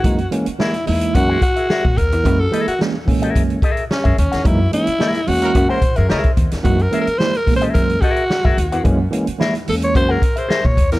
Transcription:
<<
  \new Staff \with { instrumentName = "Clean electric guitar" } { \time 4/4 \key fis \mixolydian \tempo 4 = 109 r4 <gis' ais' e''>16 r4 <gis' ais' fis''>16 r16 <gis' ais' e''>16 <gis' ais' e''>16 r8. | r8 <gis' ais' e''>16 r4 <gis' ais' e''>16 r8 <gis' ais' e''>16 r8 <gis' ais' e''>16 r16 <gis' ais' fis''>16 | r4 <gis' ais' e''>16 r4 <gis' ais' fis''>16 r16 <gis' ais' e''>16 <gis' ais' e''>16 r8. | r8 <gis' ais' e''>16 r4 <gis' ais' e''>16 r8 <gis' ais' e''>16 r8 <gis' ais' e''>16 r16 <gis' ais' fis''>16 |
r4 <gis' ais' e''>16 r4 <gis' ais' fis''>16 r16 <gis' ais' e''>16 <gis' ais' e''>16 r8. | }
  \new Staff \with { instrumentName = "Alto saxophone" } { \time 4/4 \key fis \mixolydian fis'8 r8 e'8 e'8 fis'8 fis'4 ais'8~ | ais'16 a'8 fis'8 r4. r16 cis'8 cis'8 | e'8 e'4 fis'8. bis'8 ais'8 r8. | \tuplet 3/2 { fis'8 ais'8 ais'8 bis'8 ais'8 bis'8 } ais'8 fis'4. |
r4. a'16 cis''16 bis'16 ais'8 bis'8 cis''8 ais'16 | }
  \new Staff \with { instrumentName = "Horn section" } { \time 4/4 \key fis \mixolydian r1 | r1 | r4. r16 <e ais cis' ais'>16 r16 <e ais cis' ais'>16 r8 <e ais cis' ais'>8 r8 | r1 |
r1 | }
  \new Staff \with { instrumentName = "Tine electric piano" } { \time 4/4 \key fis \mixolydian <e gis ais dis'>16 r16 <e gis ais cis'>16 r16 <e gis ais e'>16 r16 <e gis ais dis'>4 r4. | <e gis ais e'>16 r16 <e gis ais e'>16 r16 <e gis ais cis'>16 r16 <e gis ais cis'>4 r4. | <e gis ais dis'>16 r16 <e gis ais cis'>16 r16 <e gis ais e'>16 r16 <e gis ais cis'>4 r4. | <e gis ais dis'>16 r16 <e gis ais cis'>16 r16 <e gis ais e'>16 r16 <e gis ais b cis'>4 r4. |
<e gis ais cis'>16 r16 <e gis ais cis'>16 r16 <e gis ais e'>16 r16 <e gis ais bis cis'>4 r4. | }
  \new Staff \with { instrumentName = "Upright bass" } { \clef bass \time 4/4 \key fis \mixolydian fis,8 r4 e,8 fis,8 r8. ais,16 dis,16 e,16 | fis,8 r4 ais,8 fis,8 r8. fis,16 dis,16 e,16 | fis,8 r4 e,8 fis,16 r16 ais,16 fis,16 cis,16 r16 dis,16 e,16 | fis,8 r4 ais,8 fis,8 r8. fis,16 dis,16 e,16 |
fis,8 r4 e,8 fis,8 r8. ais,16 dis,16 e,16 | }
  \new DrumStaff \with { instrumentName = "Drums" } \drummode { \time 4/4 <hh bd>16 hh16 hh16 hh16 sn16 hh16 hho16 hh16 <hh bd>8 <hh bd>16 hh16 sn16 bd16 <hh bd>16 hh16 | <hh bd>8 hh16 hh16 sn8 <hho bd>16 hh16 <hh bd>16 hh16 <hh bd>16 hh16 sn16 <hh bd>16 hh16 <hh sn>16 | <hh bd>8 hh16 hh16 sn16 hh16 hho16 hh16 <hh bd>8 <hh bd>16 hh16 sn16 <hh bd>16 <hh bd>16 <hh sn>16 | <hh bd>16 hh16 hh16 hh16 sn16 hh16 <hho bd>16 hh16 <hh bd>16 hh16 <hh bd>16 hh16 sn16 bd16 hh16 hh16 |
<hh bd>8 hh16 hh16 sn16 hh16 hho16 hh16 <hh bd>8 <hh bd>16 hh16 sn16 bd16 <hh bd>16 <hh sn>16 | }
>>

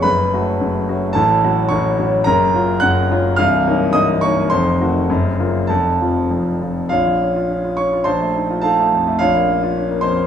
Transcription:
<<
  \new Staff \with { instrumentName = "Grand piano" } { \time 2/4 \key fis \minor \tempo 4 = 106 <b' b''>2 | <a' a''>4 <cis'' cis'''>8 r8 | \key bes \minor <bes' bes''>4 <ges'' ges'''>4 | <f'' f'''>4 <ees'' ees'''>8 <des'' des'''>8 |
<c'' c'''>2 | <a' a''>4 r4 | <f' des'' f''>4. <des'' des'''>8 | <c'' a'' c'''>4 <a' f'' a''>4 |
<f' des'' f''>4. <c'' c'''>8 | }
  \new Staff \with { instrumentName = "Grand piano" } { \time 2/4 \key fis \minor <fis,, fis,>8 <a cis' fis'>8 <fis,, fis,>8 <a cis' fis'>8 | <a,, a,>8 <fis cis' fis'>8 <a,, a,>8 <fis cis' fis'>8 | \key bes \minor <ges,, ges,>8 <ges des' f'>8 <ges,, ges,>8 <ges des' f'>8 | <c,, c,>8 <ges bes ees'>8 <c,, c,>8 <ges bes ees'>8 |
<f,, f,>8 <ees a ges'>8 <ges,, ges,>8 <des bes f'>8 | <f,, f,>8 <f c' f'>8 <f,, f,>8 <f c' f'>8 | bes,,16 f16 des'16 f'16 des'16 f'16 des'16 f'16 | bes,,16 a16 ees'16 f'16 ees'16 a16 f,16 a16 |
bes,,16 bes16 des'16 f'16 des'16 bes16 f,16 bes16 | }
>>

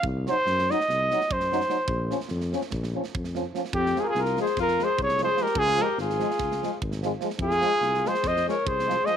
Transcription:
<<
  \new Staff \with { instrumentName = "Trumpet" } { \time 9/8 \key bes \minor \tempo 4. = 98 r8 c''4 ees''4. c''4.~ | c''4 r2. r8 | \key f \minor g'8 aes'32 bes'32 aes'16 bes'8 c''8 bes'8 c''8 des''8 c''8 bes'8 | aes'8 bes'8 aes'2 r4. |
aes'4. c''8 ees''8 des''8 c''4 ees''8 | }
  \new Staff \with { instrumentName = "Alto saxophone" } { \time 9/8 \key bes \minor r1 r8 | r1 r8 | \key f \minor c'8 f'32 g'32 f'16 f'8 aes'8 f'8 aes'8 aes'8 aes'8 g'8 | f'8 g'8 f'2 r4. |
f'4. aes'8 c''8 bes'8 aes'4 c''8 | }
  \new Staff \with { instrumentName = "Euphonium" } { \clef bass \time 9/8 \key bes \minor r8 ees'8 r8 ees'8 r8 ees'8 r8 ees'8 ees'8 | r8 des'8 r8 des'8 r8 des'8 r8 des'8 des'8 | \key f \minor r8 aes8 r8 aes8 r8 aes8 r8 aes8 aes8 | r8 aes8 r8 aes8 r8 aes8 r8 aes8 aes8 |
r8 aes8 r8 aes8 r8 aes8 r8 aes8 aes8 | }
  \new Staff \with { instrumentName = "Trombone" } { \clef bass \time 9/8 \key bes \minor r8 ges8 r8 ges8 r8 ges8 r8 ges8 ges8 | r8 f8 r8 f8 r8 f8 r8 f8 f8 | \key f \minor r8 f8 r8 f8 r8 f8 r8 f8 f8 | r8 f8 r8 f8 r8 f8 r8 f8 f8 |
r8 f8 r8 f8 r8 f8 r8 f8 f8 | }
  \new Staff \with { instrumentName = "Tuba" } { \clef bass \time 9/8 \key bes \minor c,4 ges,4 c,4 ges,4. | bes,,4 f,4 bes,,4 f,4. | \key f \minor f,4 c,4 f,4 c,4. | des,4 aes,,4 des,4 aes,,4. |
f,4 c,4 f,4 c,4. | }
  \new DrumStaff \with { instrumentName = "Drums" } \drummode { \time 9/8 bd8 sn8 sn16 sn16 sn16 sn16 sn8 sn16 sn16 bd16 sn16 sn16 sn16 sn8 | bd8 sn16 sn16 sn16 sn16 sn16 sn16 <bd sn>16 sn8 sn16 bd16 sn16 sn8 sn16 sn16 | bd16 sn16 sn8 sn16 sn16 sn16 sn16 <bd sn>16 sn16 sn8 bd16 sn16 sn8 sn16 sn16 | bd16 sn16 sn8 sn16 sn16 sn16 sn16 <bd sn>16 sn16 sn8 bd16 sn16 sn8 sn16 sn16 |
bd16 sn16 sn8 sn16 sn16 sn16 sn16 <bd sn>16 sn16 sn8 bd16 sn16 sn8 sn8 | }
>>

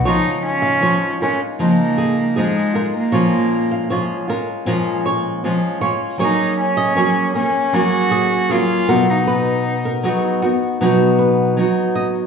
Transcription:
<<
  \new Staff \with { instrumentName = "Nylon-string guitar" } { \time 4/4 \key des \mixolydian \tempo 4 = 78 des''8 r16 f''16 des''8 bes'16 r8. aes'16 r16 aes'16 r16 bes'16 r16 | des''8 r16 f''16 des''8 bes'16 r8. des''8 r8 des''16 r16 | des''8 r16 ees''16 des''8 bes'16 r8. aes'16 r16 aes'16 r16 bes'16 r16 | ces''8 r16 bes'16 aes'8 bes'16 r8. ces''8 r8 ees''16 r16 | }
  \new Staff \with { instrumentName = "Cello" } { \time 4/4 \key des \mixolydian ees'8 des'4 des'8 bes4 aes8. bes16~ | bes4~ bes16 r2 r8. | ees'8 des'4 des'8 ges'4 f'8. ees'16~ | ees'4~ ees'16 r2 r8. | }
  \new Staff \with { instrumentName = "Steel-string acoustic guitar" } { \time 4/4 \key des \mixolydian <des f aes ees' f'>4 <f aes ees' f'>8 <aes ees' f'>8 <des f aes ees' f'>4 <f aes ees' f'>8 <aes ees' f'>8 | <bes, f aes des' f'>4 <f aes des' f'>8 <aes des' f'>8 <bes, f aes des' f'>4 <f aes des' f'>8 <aes des' f'>8 | <ges bes des' aes'>4 <ges bes des' aes'>8 <bes des' aes'>8 <ges bes des' aes'>4 <ges bes des' aes'>8 <ces ges ces' ees' ges'>8~ | <ces ges ces' ees' ges'>4 <ges ces' ees' ges'>8 <ces' ees' ges'>8 <ces ges ces' ees' ges'>4 <ges ces' ees' ges'>4 | }
>>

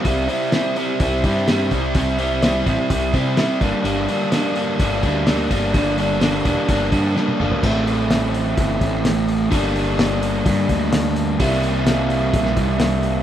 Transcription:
<<
  \new Staff \with { instrumentName = "Overdriven electric guitar" } { \clef bass \time 4/4 \key g \dorian \tempo 4 = 127 <c g c' e'>8 <c g c' e'>8 <c g c' e'>8 <c g c' e'>8 <c g c' e'>8 <c g c' e'>8 <c g c' e'>8 <c g c' e'>8 | <c g c' e'>8 <c g c' e'>8 <c g c' e'>8 <c g c' e'>8 <c g c' e'>8 <c g c' e'>8 <c g c' e'>8 <g, d g bes d'>8 | <g, d g bes d'>8 <g, d g bes d'>8 <g, d g bes d'>8 <g, d g bes d'>8 <g, d g bes d'>8 <g, d g bes d'>8 <g, d g bes d'>8 <g, d g bes d'>8 | <g, d g bes d'>8 <g, d g bes d'>8 <g, d g bes d'>8 <g, d g bes d'>8 <g, d g bes d'>8 <g, d g bes d'>8 <g, d g bes d'>8 <g, d g bes d'>8 |
<a, e a c' e'>1 | <g, d g bes d'>1 | <c g bes e'>1 | }
  \new Staff \with { instrumentName = "Picked electric bass" } { \clef bass \time 4/4 \key g \dorian c,8 r4. c,8 g,4 c,8 | c,4. a,,16 r16 c,8 c8 r8 g,,16 r16 | g,,8 r4. g,,8 d,4 g,,8 | g,,4. e,,16 r16 g,,8 g,8 r8 g,,16 r16 |
a,,2 g,,8 a,,4. | g,,2 g,8 d,4. | c,2 bes,,8 c,4. | }
  \new DrumStaff \with { instrumentName = "Drums" } \drummode { \time 4/4 <hho bd>8 hho8 <hho sn>8 hho8 <hho bd>8 <hho bd>8 <hho sn>8 <hho bd>8 | <hho bd>8 hho8 <hho sn>8 <hho bd>8 <hho bd>8 <hho bd>8 <hho sn>8 <hho bd>8 | hho8 hho8 <hho sn>8 hho8 <hho bd>8 <hho bd>8 <hho sn>8 <hho bd>8 | <hho bd>8 hho8 <hho sn>8 <hho bd>8 <hho bd>8 <hho bd>8 sn16 tommh16 toml16 tomfh16 |
<cymc bd>8 hho8 <hho sn>8 hho8 <hho bd>8 <hho bd>8 <hho sn>8 hho8 | <hho bd>8 hho8 <hho sn>8 hho8 <hho bd>8 <hho bd>8 <hho sn>8 hho8 | <hho bd>8 hho8 <hho sn>8 hho8 <hho bd>16 sn16 <hho bd>8 <hho sn>8 hho8 | }
>>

